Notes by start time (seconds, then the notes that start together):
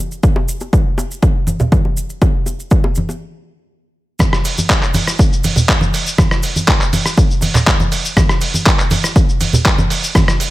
0.12 maracas
0.23 kick, maracas
0.36 high bongo
0.48 maracas
0.60 high bongo, maracas
0.73 kick, maracas
0.98 high bongo, maracas
1.11 maracas
1.22 kick, high bongo, maracas
1.47 high conga, maracas
1.60 high bongo, low conga, maracas
1.72 kick, high conga, maracas
1.85 high bongo
1.97 maracas
2.10 maracas
2.22 kick, high bongo, maracas
2.46 high bongo, maracas
2.60 maracas
2.71 kick, maracas
2.84 high bongo
2.95 high conga, maracas
3.09 high bongo, maracas
4.19 kick, cross-stick, high conga, cabasa, maracas
4.33 cross-stick, cabasa
4.45 open hi-hat, maracas
4.58 high bongo, high conga, cabasa, maracas
4.69 kick, clap, cabasa, maracas
4.83 clap, cabasa
4.94 open hi-hat, high conga, maracas
5.07 cross-stick, cabasa, maracas
5.18 kick, cabasa, maracas
5.33 cabasa
5.44 open hi-hat, high conga, maracas
5.56 high bongo, low conga, cabasa, maracas
5.69 kick, clap, cabasa, maracas
5.81 high conga, cabasa
5.94 open hi-hat, maracas
6.06 cabasa, maracas
6.18 kick, cross-stick, high conga, cabasa, maracas
6.31 cross-stick, cabasa
6.43 open hi-hat, maracas
6.56 high bongo, high conga, cabasa, maracas
6.68 kick, clap, cabasa, maracas
6.81 clap, cabasa
6.93 open hi-hat, high conga, maracas
7.06 cross-stick, cabasa, maracas
7.17 kick, cabasa, maracas
7.31 cabasa
7.41 open hi-hat, high bongo, high conga, maracas
7.54 clap, low conga, cabasa, maracas
7.67 kick, clap, cabasa, maracas
7.80 high conga, cabasa
7.92 open hi-hat, maracas
8.05 cabasa, maracas
8.16 kick, cross-stick, high conga, cabasa, maracas
8.29 cross-stick, cabasa
8.41 open hi-hat, maracas
8.54 high bongo, high conga, cabasa, maracas
8.66 kick, clap, cabasa, maracas
8.79 clap, cabasa
8.91 open hi-hat, high conga, maracas
9.04 cross-stick, cabasa, maracas
9.16 kick, cabasa, maracas
9.29 cabasa
9.40 open hi-hat, high conga, maracas
9.53 high bongo, low conga, cabasa, maracas
9.65 kick, clap, cabasa, maracas
9.78 high conga, cabasa
9.90 open hi-hat, maracas
10.04 cabasa, maracas
10.15 kick, cross-stick, high conga, cabasa, maracas
10.28 cross-stick, cabasa
10.40 open hi-hat, maracas